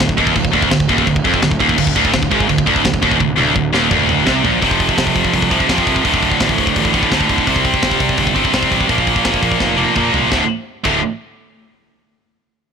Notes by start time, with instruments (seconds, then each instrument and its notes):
0.00 picked electric bass D1, distorted electric guitar D2, kick, snare, china
0.09 kick
0.17 picked electric bass D#1, distorted electric guitar D#2, kick
0.27 kick
0.35 picked electric bass D1, distorted electric guitar D2, kick, china
0.45 kick
0.52 picked electric bass D1, distorted electric guitar D2, kick
0.62 kick
0.70 picked electric bass D1, distorted electric guitar D2, kick, snare, china
0.80 kick
0.89 picked electric bass D#1, distorted electric guitar D#2, kick
0.98 kick
1.07 picked electric bass D1, distorted electric guitar D2, kick, china
1.16 kick
1.24 picked electric bass F1, distorted electric guitar F2, kick
1.34 kick
1.42 picked electric bass D1, distorted electric guitar D2, kick, snare, china
1.51 kick
1.60 picked electric bass D#1, distorted electric guitar D#2, kick
1.69 kick
1.78 picked electric bass D1, distorted electric guitar D2, kick, crash, china
1.87 kick
1.96 picked electric bass D1, distorted electric guitar D2, kick
2.05 kick
2.13 picked electric bass D1, distorted electric guitar D2, kick, snare, china
2.23 kick
2.31 picked electric bass G#1, distorted electric guitar G#2, kick
2.40 kick
2.49 picked electric bass D1, distorted electric guitar D2, kick, china
2.58 kick
2.66 picked electric bass D1, distorted electric guitar D2, kick
2.76 kick
2.84 picked electric bass D1, distorted electric guitar D2, kick, snare, china
2.94 kick
3.02 picked electric bass D#1, distorted electric guitar D#2, kick
3.11 kick
3.19 picked electric bass D1, distorted electric guitar D2, kick, high tom
3.36 picked electric bass D1, distorted electric guitar D2, high tom
3.55 picked electric bass D1, distorted electric guitar D2, kick
3.73 picked electric bass D#1, distorted electric guitar D#2, snare
3.91 picked electric bass D1, distorted electric guitar D2, kick, mid tom
4.09 mid tom
4.26 picked electric bass C2, distorted electric guitar C3, kick, snare
4.43 picked electric bass A#1, distorted electric guitar A#2, floor tom
4.61 picked electric bass F1, distorted electric guitar F2 C3 F3, kick, open hi-hat
4.71 kick
4.80 kick, open hi-hat
4.89 kick
4.98 picked electric bass C2, kick, snare, open hi-hat
5.07 kick
5.16 picked electric bass F1, kick, open hi-hat
5.25 kick
5.34 picked electric bass C2, kick, open hi-hat
5.42 kick
5.51 distorted electric guitar F2 C3 F3, kick, open hi-hat
5.60 kick
5.68 distorted electric guitar F2 C3 F3, picked electric bass F2, kick, snare, open hi-hat
5.78 kick
5.87 picked electric bass C2, kick, open hi-hat
5.96 kick
6.04 picked electric bass D1, distorted electric guitar D2 A2 D3, kick, open hi-hat
6.14 kick
6.23 kick, open hi-hat
6.31 kick
6.40 picked electric bass A1, kick, snare, open hi-hat
6.49 kick
6.58 picked electric bass D1, kick, open hi-hat
6.67 kick
6.76 picked electric bass A1, kick, open hi-hat
6.85 kick
6.92 distorted electric guitar D2 A2 D3, kick, open hi-hat
7.03 kick
7.11 distorted electric guitar D2 A2 D3, picked electric bass D2, kick, snare, open hi-hat
7.21 kick
7.29 picked electric bass D1, kick, open hi-hat
7.38 kick
7.46 picked electric bass C2, distorted electric guitar C3 G3 C4, kick, open hi-hat
7.56 kick
7.65 kick, open hi-hat
7.74 kick
7.82 picked electric bass G1, kick, snare, open hi-hat
7.91 kick
8.00 picked electric bass C2, kick, open hi-hat
8.09 kick
8.17 picked electric bass G1, kick, open hi-hat
8.27 kick
8.35 distorted electric guitar C3 G3 C4, kick, open hi-hat
8.45 kick
8.53 picked electric bass C2, distorted electric guitar C3 G3 C4, kick, snare, open hi-hat
8.63 kick
8.72 picked electric bass A1, kick, open hi-hat
8.81 kick
8.88 picked electric bass A#1, distorted electric guitar A#2 F3 A#3, kick, open hi-hat
8.98 kick
9.07 kick, open hi-hat
9.16 kick
9.25 picked electric bass F1, kick, snare, open hi-hat
9.34 kick
9.42 picked electric bass A#1, kick, open hi-hat
9.52 kick
9.60 picked electric bass F1, kick, snare
9.77 distorted electric guitar A#2 F3 A#3, high tom
9.95 distorted electric guitar A#2 F3 A#3, picked electric bass A#2, kick, mid tom
10.13 picked electric bass C2, floor tom
10.31 picked electric bass D1, distorted electric guitar D2 A2 D3, kick, snare
10.84 picked electric bass D1, distorted electric guitar D2 A2 D3, kick, crash